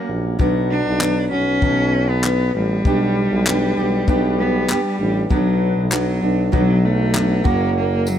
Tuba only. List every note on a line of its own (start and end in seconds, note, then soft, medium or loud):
0.09 0.37 A#1 medium
0.40 0.82 B1 medium
0.86 1.28 B1 loud
1.32 1.60 B1 medium
1.62 2.50 B1 loud
2.55 2.83 A1 medium
2.85 3.28 B1 medium
3.31 3.74 B1 loud
3.77 4.05 B1 medium
4.08 4.70 B1 loud
5.00 5.28 A1 loud
5.31 5.73 B1 medium
5.77 6.19 B1 medium
6.23 6.51 B1 medium
6.53 7.41 B1 loud
7.45 8.18 F#1 medium